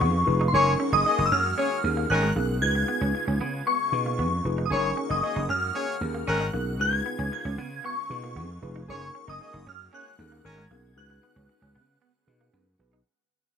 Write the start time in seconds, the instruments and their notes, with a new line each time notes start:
Already playing: analog synth pad C#3 G#3 B3 F4, tine electric piano D#4 F4 G#4 B4, synth bell C#6
0.01 slap bass F2, clean electric guitar B3
0.27 slap bass F1, tine electric piano D#4 F4 G#4 B4, muted clean electric guitar stroke
0.41 clean electric guitar D#4
0.48 synth bell C6
0.53 slap bass F#1, analog synth pad D#3 A#3 F#4, horn section A#3 G#4 C#5, tine electric piano C#4 D#4 G#4 A#4, synth bell C#6
0.67 muted clean electric guitar stroke
0.80 clean electric guitar C#4
0.92 slap bass F#1, horn section A#3 G#4 D#5, clean electric guitar D#4, synth bell D#6
1.06 horn section A#3 G#4 D#5, muted clean electric guitar stroke
1.19 slap bass F#1, clean electric guitar D#4
1.26 synth bell E6
1.31 slap bass F#2, clean electric guitar C#4, synth bell F6
1.58 horn section A#3 G#4 C#5, clean electric guitar C#4
1.83 slap bass D#2, tine electric piano C#4 D#4 G#4 A#4, muted clean electric guitar stroke
1.97 clean electric guitar A#3
2.10 slap bass G#1, horn section D#3 C#4 A#4, synth bell F#6, muted clean electric guitar stroke
2.23 clean electric guitar G#3
2.36 slap bass B1, clean electric guitar A#3, tine electric piano C#4 D#4 G#4 A#4
2.62 slap bass C#2, analog synth pad C#3 B3 F4, tine electric piano D#4 F4 G#4 B4, synth bell G#6
2.75 muted clean electric guitar stroke
2.88 clean electric guitar B3
3.01 slap bass C#2, clean electric guitar C#4
3.15 muted clean electric guitar stroke
3.27 slap bass C#2, clean electric guitar C#4
3.40 slap bass C#3, clean electric guitar B3
3.67 clean electric guitar B3, synth bell C#6
3.92 slap bass B2, tine electric piano D#4 F4 G#4 B4, muted clean electric guitar stroke
4.06 clean electric guitar A#3
4.19 slap bass F2, clean electric guitar B3
4.45 slap bass F1, tine electric piano D#4 F4 G#4 B4, muted clean electric guitar stroke
4.58 clean electric guitar D#4
4.66 synth bell D#6
4.71 slap bass F#1, analog synth pad D#3 A#3 F#4, horn section A#3 G#4 C#5, tine electric piano C#4 D#4 G#4 A#4, synth bell C#6
4.84 muted clean electric guitar stroke
4.97 clean electric guitar C#4
5.09 slap bass F#1, horn section A#3 G#4 D#5, clean electric guitar D#4, synth bell D#6
5.23 horn section A#3 G#4 D#5, muted clean electric guitar stroke
5.36 slap bass F#1, clean electric guitar D#4
5.49 slap bass F#2, clean electric guitar C#4, synth bell F6
5.75 horn section A#3 G#4 C#5, clean electric guitar C#4
6.01 slap bass D#2, tine electric piano C#4 D#4 G#4 A#4, muted clean electric guitar stroke
6.14 clean electric guitar A#3
6.27 slap bass G#1, horn section D#3 C#4 A#4, synth bell F#6, muted clean electric guitar stroke
6.40 clean electric guitar G#3
6.53 slap bass B1, clean electric guitar A#3, tine electric piano C#4 D#4 G#4 A#4
6.79 slap bass C#2, analog synth pad C#3 B3 F4, tine electric piano D#4 F4 G#4 B4, synth bell G#6
6.93 muted clean electric guitar stroke
7.06 clean electric guitar B3
7.19 slap bass C#2, clean electric guitar C#4
7.32 synth bell G#6, muted clean electric guitar stroke
7.45 slap bass C#2, clean electric guitar C#4
7.58 slap bass C#3, clean electric guitar B3
7.84 clean electric guitar B3, synth bell C#6
8.09 slap bass B2, tine electric piano D#4 F4 G#4 B4, muted clean electric guitar stroke
8.24 clean electric guitar A#3
8.36 slap bass F2, clean electric guitar B3
8.62 slap bass F1, tine electric piano D#4 F4 G#4 B4, muted clean electric guitar stroke
8.76 clean electric guitar D#4
8.88 slap bass F#1, analog synth pad D#3 G#3 A#3 F#4, horn section A#3 G#4 C#5, tine electric piano C#4 D#4 G#4 A#4, synth bell C#6
9.02 muted clean electric guitar stroke
9.15 clean electric guitar C#4
9.28 slap bass F#1, horn section A#3 G#4 D#5, clean electric guitar D#4, synth bell D#6
9.40 horn section A#3 G#4 D#5, muted clean electric guitar stroke
9.54 slap bass F#1, clean electric guitar D#4
9.66 slap bass F#2, clean electric guitar C#4, synth bell F6
9.92 horn section A#3 G#4 C#5, clean electric guitar C#4, synth bell F#6
10.19 slap bass D#2, tine electric piano C#4 D#4 G#4 A4, muted clean electric guitar stroke
10.26 tine electric piano A#4
10.32 clean electric guitar A#3
10.44 slap bass G#1, horn section D#3 C#4 A#4, synth bell G#6, muted clean electric guitar stroke
10.58 clean electric guitar G#3
10.71 slap bass B1, clean electric guitar A#3, tine electric piano C#4 D#4 G#4 A#4
10.96 slap bass C#2, analog synth pad C#3 B3, tine electric piano D#4 F#4 G#4 B4, synth bell F#6
11.10 muted clean electric guitar stroke
11.23 clean electric guitar B3
11.36 slap bass C#2, clean electric guitar C#4
11.49 muted clean electric guitar stroke
11.62 slap bass C#2, clean electric guitar C#4
11.75 slap bass C#3, clean electric guitar B3
12.02 clean electric guitar B3
12.27 slap bass B2, tine electric piano D#4 F#4 G#4 B4, muted clean electric guitar stroke
12.41 clean electric guitar A#3
12.53 slap bass F#2, clean electric guitar B3
12.79 slap bass B1, tine electric piano D#4 F#4 G#4 B4, muted clean electric guitar stroke
12.93 clean electric guitar D#4